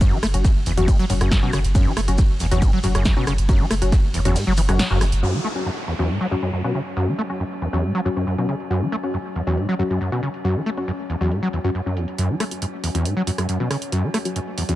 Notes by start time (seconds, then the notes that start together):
0.01 F#2 F#3 C#4 F#4, kick, closed hi-hat, ride, shaker
0.12 F#1 F#3
0.23 F#1 A3, cross-stick, open hi-hat, shaker
0.34 F#1 F#3 C#4 F#4, closed hi-hat
0.45 F#2, kick, snare, closed hi-hat, ride, shaker
0.56 F#1
0.66 F#1 E2, open hi-hat, shaker
0.77 F#1 E2 F#3 C#4 F#4, closed hi-hat
0.88 G#2, kick, closed hi-hat, ride, shaker
0.99 F#1 F#3, closed hi-hat
1.10 F#1 F#2 F#3 C#4 F#4, open hi-hat, shaker
1.21 F#1 F#2 F#3 C#4 F#4, cross-stick, closed hi-hat
1.31 F#2, kick, snare, closed hi-hat, ride, shaker
1.43 F#1 B2 F#3 C#4 F#4
1.53 F#1 C#3, cross-stick, open hi-hat, shaker
1.64 F#1, snare, closed hi-hat
1.75 F#2 F#3 C#4 F#4, kick, closed hi-hat, ride, shaker
1.86 F#1 F#3
1.97 F#1 A3, cross-stick, open hi-hat, shaker
2.08 F#1 F#3 C#4 F#4, closed hi-hat
2.18 F#2, kick, snare, closed hi-hat, ride, shaker
2.30 F#1
2.40 F#1 E2, snare, open hi-hat, shaker
2.51 F#1 E2 F#3 C#4 F#4, closed hi-hat
2.62 G#2, kick, closed hi-hat, ride, shaker
2.73 F#1 F#3
2.83 F#1 F#2 F#3 C#4 F#4, open hi-hat, shaker
2.95 F#1 F#2 F#3 C#4 F#4, cross-stick, closed hi-hat
3.05 F#2, kick, snare, closed hi-hat, ride, shaker
3.17 F#1 B2 F#3 C#4 F#4
3.27 F#1 C#3, cross-stick, open hi-hat, shaker
3.38 F#1, closed hi-hat
3.49 F#2 F#3 C#4 F#4, kick, closed hi-hat, ride, shaker
3.60 F#1 F#3
3.71 F#1 A3, cross-stick, open hi-hat, shaker
3.82 F#1 F#3 C#4 F#4, closed hi-hat
3.92 F#2, kick, snare, closed hi-hat, ride, shaker
4.04 F#1
4.14 F#1 E2, open hi-hat, shaker
4.25 F#1 E2 F#3 C#4 F#4, closed hi-hat
4.36 G#2, snare, closed hi-hat, ride, shaker
4.47 F#1 F#3
4.57 F#1 E3, open hi-hat, shaker
4.69 F#1 F#2 F#3 C#4 F#4, cross-stick, closed hi-hat
4.79 B2, snare, closed hi-hat, ride, shaker
4.90 F#1 F#2 F#3 C#4 F#4
5.01 F#1 F#2, cross-stick, open hi-hat, shaker
5.12 F#1, snare, closed hi-hat
5.23 F#2 F#3 C#4 F#4, downlifter
5.34 F#3
5.44 A3
5.56 F#3 C#4 F#4
5.66 F#2
5.88 E2
5.99 E2 F#3 C#4 F#4
6.10 G#2
6.21 F#3
6.31 F#2 F#3 C#4 F#4
6.43 F#2 F#3 C#4 F#4
6.53 F#2, closed hi-hat
6.64 B2 F#3 C#4 F#4
6.75 C#3, closed hi-hat
6.86 closed hi-hat
6.97 F#2 F#3 C#4 F#4
7.08 F#3
7.18 A3
7.30 F#3 C#4 F#4, closed hi-hat
7.40 F#2, closed hi-hat
7.62 E2, closed hi-hat
7.73 E2 F#3 C#4 F#4, closed hi-hat
7.84 G#2, closed hi-hat
7.95 F#3
8.05 F#2 F#3 C#4 F#4, closed hi-hat
8.17 F#2 F#3 C#4 F#4, closed hi-hat
8.27 F#2, closed hi-hat
8.38 B2 F#3 C#4 F#4
8.49 C#3, closed hi-hat
8.60 closed hi-hat
8.71 F#2 F#3 C#4 F#4, closed hi-hat
8.82 F#3
8.92 A3, closed hi-hat
9.03 F#3 C#4 F#4, closed hi-hat
9.14 F#2, closed hi-hat
9.36 E2, closed hi-hat
9.47 E2 F#3 C#4 F#4, closed hi-hat
9.57 G#2, closed hi-hat
9.69 F#3
9.79 F#2 F#3 C#4 F#4, closed hi-hat
9.90 F#2 F#3 C#4 F#4, closed hi-hat
10.01 F#2, closed hi-hat
10.12 B2 F#3 C#4 F#4
10.23 C#3, closed hi-hat
10.34 closed hi-hat
10.44 F#2 F#3 C#4 F#4, closed hi-hat
10.56 F#3
10.66 A3, closed hi-hat
10.77 F#3 C#4 F#4, closed hi-hat
10.88 F#2, closed hi-hat
11.10 E2, closed hi-hat
11.21 E2 F#3 C#4 F#4, closed hi-hat
11.31 G#2, closed hi-hat
11.43 F#3
11.53 E2, closed hi-hat
11.64 F#2 F#3 C#4 F#4, closed hi-hat
11.75 F#2, closed hi-hat
11.86 F#2 F#3 C#4 F#4
11.97 E2, closed hi-hat
12.08 closed hi-hat
12.18 F#2 F#3 C#4 F#4, closed hi-hat
12.30 F#3
12.40 A3, cross-stick, open hi-hat
12.51 F#3 C#4 F#4, closed hi-hat
12.62 F#2, closed hi-hat
12.84 E2, open hi-hat
12.95 E2 F#3 C#4 F#4, closed hi-hat
13.05 G#2, closed hi-hat
13.17 F#3
13.27 F#2 F#3 C#4 F#4, open hi-hat
13.38 F#2 F#3 C#4 F#4, cross-stick, closed hi-hat
13.49 F#2, closed hi-hat
13.60 B2 F#3 C#4 F#4
13.71 C#3, cross-stick, open hi-hat
13.82 closed hi-hat
13.92 F#2 F#3 C#4 F#4, closed hi-hat
14.04 F#3
14.14 A3, cross-stick, open hi-hat
14.25 F#3 C#4 F#4, closed hi-hat
14.36 F#2, closed hi-hat
14.58 E2, open hi-hat
14.69 E2 F#3 C#4 F#4, closed hi-hat